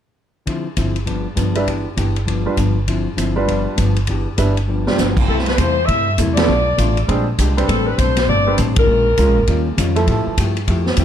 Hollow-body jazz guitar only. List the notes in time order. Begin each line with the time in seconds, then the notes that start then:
0.46 D3 F3 C4 E4
0.77 D3 F3 C4 E4
1.05 G2 F3 B3 D4
1.35 G2 F3 B3 D4
1.67 E3 B3 D4 G4
1.96 E3 B3 D4 G4
2.26 G2 F3 B3 D4
2.57 G2 F3 B3 D4
2.87 D3 F3 C4 E4
3.16 D3 F3 C4 E4
3.46 G2 F3 B3 D4
3.76 G2 F3 B3 D4
4.08 E3 B3 D4 G4
4.37 E3 B3 D4 G4
4.67 G2 F3 B3 D4
4.97 G2 F3 B3 D4
5.28 C3 G3 A3 E4
5.58 C3 G3 A3 E4
5.88 C3 G3 A3 E4
6.18 C3 G3 A3 E4
6.47 B2 A3 D4 F4
6.77 B2 A3 D4 F4
7.07 A#2 G#3 D4 G4
7.39 A#2 G#3 D4 G4
7.69 A2 G3 C4 D4
7.99 A2 G3 C4 D4
8.28 A2 G3 C4 D4
8.58 A2 G3 C4 D4
8.89 A#2 G#3 C#4 F4
9.18 A#2 G#3 C#4 F4
9.48 D#3 G3 C#4 F4
9.78 D#3 G3 C#4 F4
10.07 F3 A3 E4 G4
10.38 F3 A3 E4 G4
10.67 F3 A3 E4 G4
10.98 F3 A3 E4 G4